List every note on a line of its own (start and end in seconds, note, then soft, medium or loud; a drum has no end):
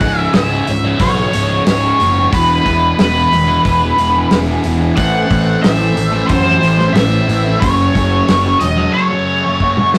0.00 0.26 C#1 medium
0.00 0.32 C#2 medium
0.00 0.34 G#2 medium
0.00 7.59 E3 medium
0.00 4.94 G#3 medium
0.00 2.29 C#4 medium
0.00 4.94 G#4 medium
0.00 2.30 C#5 medium
0.00 0.19 F#5 medium
0.00 kick medium
0.00 open hi-hat soft
0.04 0.34 C#3 medium
0.19 0.34 E5 medium
0.33 0.60 C#1 medium
0.33 0.67 C#2 medium
0.33 0.52 G#2 medium
0.33 0.50 C#3 loud
0.33 1.02 E5 medium
0.33 snare loud
0.33 open hi-hat medium
0.51 0.67 G#2 medium
0.51 0.67 C#3 medium
0.67 0.93 C#1 medium
0.67 muted distorted electric guitar stroke soft
0.67 open hi-hat soft
0.84 1.19 G#2 medium
0.84 1.16 C#3 medium
1.00 1.25 B1 medium
1.00 1.63 C#5 medium
1.00 kick medium
1.00 open hi-hat medium
1.17 1.52 G#2 soft
1.17 1.49 C#3 medium
1.33 1.59 C#1 medium
1.33 open hi-hat medium
1.50 1.67 G#2 medium
1.50 1.68 C#3 medium
1.67 1.92 C#1 medium
1.67 1.97 C#2 medium
1.67 1.84 G#2 medium
1.67 1.80 C#3 medium
1.67 2.34 C#5 medium
1.67 snare loud
1.67 open hi-hat medium
1.81 1.99 G#2 soft
1.81 1.99 C#3 medium
1.98 2.26 F#1 medium
1.98 2.30 C#2 medium
1.98 2.16 G#2 medium
1.98 2.14 C#3 medium
1.98 open hi-hat soft
2.15 2.31 G#2 soft
2.15 2.30 C#3 medium
2.30 2.58 E1 medium
2.30 2.62 E2 medium
2.30 2.63 B2 medium
2.30 2.65 E3 loud
2.30 4.94 B3 medium
2.30 4.94 B4 medium
2.30 2.96 B4 medium
2.30 kick medium
2.30 open hi-hat medium
2.63 2.91 E1 medium
2.63 2.96 E2 medium
2.63 2.97 B2 medium
2.63 2.99 E3 medium
2.63 kick medium
2.63 open hi-hat soft
2.97 3.24 E1 medium
2.97 3.32 E2 medium
2.97 3.17 B2 medium
2.97 3.14 E3 medium
2.97 snare loud
2.97 open hi-hat medium
3.02 4.29 B4 medium
3.15 3.32 B2 medium
3.15 3.34 E3 medium
3.32 3.57 E1 medium
3.32 muted distorted electric guitar stroke soft
3.32 open hi-hat soft
3.47 3.83 B2 medium
3.47 3.81 E3 medium
3.65 3.90 E1 medium
3.65 kick medium
3.65 open hi-hat medium
3.82 4.17 B2 soft
3.82 4.14 E3 medium
3.98 4.23 E1 medium
3.98 open hi-hat soft
4.15 4.33 B2 medium
4.15 4.34 E3 medium
4.31 4.57 E1 medium
4.31 4.64 E2 medium
4.31 4.50 B2 medium
4.31 snare medium
4.31 open hi-hat medium
4.35 4.47 E3 loud
4.48 4.65 B2 medium
4.48 4.65 E3 medium
4.64 4.90 E1 medium
4.64 4.96 E2 medium
4.64 4.81 B2 medium
4.64 4.78 E3 medium
4.64 open hi-hat soft
4.79 4.96 B2 medium
4.79 4.95 E3 medium
4.97 5.23 A1 medium
4.97 5.27 A2 loud
4.97 5.29 E3 medium
4.97 5.31 A3 loud
4.97 9.98 A3 medium
4.97 7.60 C4 medium
4.97 9.98 A4 medium
4.97 7.61 C5 medium
4.97 5.62 F#5 medium
4.97 kick medium
4.97 open hi-hat medium
5.29 5.56 A1 medium
5.29 5.61 A2 medium
5.29 5.62 E3 medium
5.29 5.65 A3 medium
5.29 kick medium
5.29 open hi-hat soft
5.62 5.89 A1 medium
5.62 5.94 A2 medium
5.62 5.80 E3 medium
5.62 5.78 A3 medium
5.62 6.31 E5 medium
5.62 snare loud
5.62 open hi-hat medium
5.78 5.94 E3 medium
5.78 5.96 A3 medium
5.95 6.22 A1 medium
5.95 muted distorted electric guitar stroke soft
5.95 open hi-hat soft
6.11 6.46 E3 medium
6.11 6.43 A3 medium
6.26 6.55 F#2 medium
6.26 6.96 C5 medium
6.26 kick medium
6.26 open hi-hat medium
6.44 6.79 E3 medium
6.44 6.76 A3 medium
6.63 6.88 A1 medium
6.63 open hi-hat soft
6.78 6.94 E3 medium
6.78 6.94 A3 medium
6.78 snare soft
6.93 7.20 A1 medium
6.93 7.27 A2 medium
6.93 7.12 E3 medium
6.93 7.09 A3 loud
6.93 7.62 E5 medium
6.93 snare medium
6.93 open hi-hat medium
7.11 7.28 E3 medium
7.11 7.29 A3 medium
7.28 7.54 A1 medium
7.28 7.59 A2 medium
7.28 7.46 E3 medium
7.28 7.44 A3 medium
7.28 open hi-hat soft
7.45 7.61 E3 medium
7.45 7.60 A3 medium
7.59 7.87 F#1 medium
7.59 7.94 F#2 medium
7.59 7.96 C#3 loud
7.59 9.98 F#3 medium
7.59 9.98 C#4 medium
7.59 9.98 C#5 medium
7.59 8.59 C#5 medium
7.59 kick loud
7.59 open hi-hat medium
7.64 7.97 F#3 loud
7.95 8.20 F#1 medium
7.95 8.27 F#2 medium
7.95 8.29 C#3 medium
7.95 8.30 F#3 medium
7.95 kick medium
7.95 open hi-hat soft
8.28 8.54 F#1 medium
8.28 8.60 F#2 medium
8.28 8.46 C#3 loud
8.28 8.43 F#3 loud
8.28 snare medium
8.28 open hi-hat medium
8.45 8.60 C#3 medium
8.45 8.61 F#3 medium
8.60 8.86 E1 medium
8.60 8.91 D#5 medium
8.60 muted distorted electric guitar stroke soft
8.60 open hi-hat medium
8.76 9.12 C#3 soft
8.76 9.09 F#3 medium
8.93 9.89 C#5 medium
9.10 9.46 C#3 soft
9.10 9.43 F#3 medium
9.44 9.60 C#3 medium
9.44 9.61 F#3 medium
9.59 9.91 F#2 medium
9.59 9.78 C#3 medium
9.59 9.76 F#3 medium
9.59 kick soft
9.77 9.93 C#3 medium
9.77 9.94 F#3 medium
9.77 mid tom medium
9.93 9.98 F#2 medium
9.93 9.98 C#3 medium
9.93 snare medium